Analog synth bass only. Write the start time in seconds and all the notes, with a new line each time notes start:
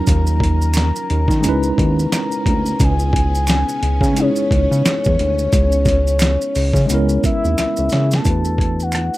0.08 D#2
1.10 D#2
1.28 D#3
1.44 C#2
1.79 D#2
2.47 D2
2.80 C#2
3.83 C#2
4.01 C#3
4.51 C#2
4.71 C#3
5.07 E2
5.20 D2
5.53 C#2
6.56 C#2
6.74 C#3
6.90 C#2
7.24 D#2
7.45 D#2
7.59 C#2
7.79 C#2
7.93 C#3
8.26 E2